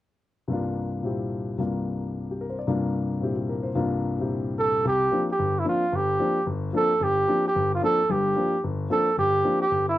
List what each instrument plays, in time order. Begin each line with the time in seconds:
0.48 grand piano C2 G2 A#3
0.52 grand piano D4 F4
1.03 grand piano A#2 C4 E4 G4
1.58 grand piano C2 G2 A#3 D4 F4
2.31 grand piano G4
2.41 grand piano A#4
2.50 grand piano C5
2.59 grand piano D5
2.67 grand piano C2 G2 A#3 D4 F4
3.21 grand piano A#2 C4 E4 G4
3.36 grand piano G4
3.49 grand piano A#4
3.63 grand piano C5
3.75 grand piano C2 G2 A#3 D4 F4
4.18 grand piano A#2 C4 E4 G4
4.59 muted trumpet A4
4.85 grand piano C2, muted trumpet G4
5.12 grand piano F3 A#3 C4 D4
5.32 muted trumpet G4
5.39 grand piano G1
5.59 muted trumpet E4
5.65 grand piano F3 A#3 C4 D4
5.69 muted trumpet F4
5.92 grand piano G1, muted trumpet G4
6.19 grand piano F3 A#3 C4 D4
6.46 grand piano G1
6.73 grand piano F3 A#3 C4 D4, muted trumpet A4
7.00 grand piano G1, muted trumpet G4
7.28 grand piano F3 A#3 C4 D4
7.48 muted trumpet G4
7.55 grand piano G1
7.75 muted trumpet F4
7.82 grand piano F3 A#3 C4 D4, muted trumpet A4
8.09 grand piano G1 G2, muted trumpet G4
8.36 grand piano F3 A#3 C4 D4
8.64 grand piano G1
8.90 grand piano F3 A#3 C4 D4, muted trumpet A4
9.18 grand piano G1, muted trumpet G4
9.44 grand piano F3 A#3 C4 D4
9.62 muted trumpet G4
9.71 grand piano G1
9.89 muted trumpet E4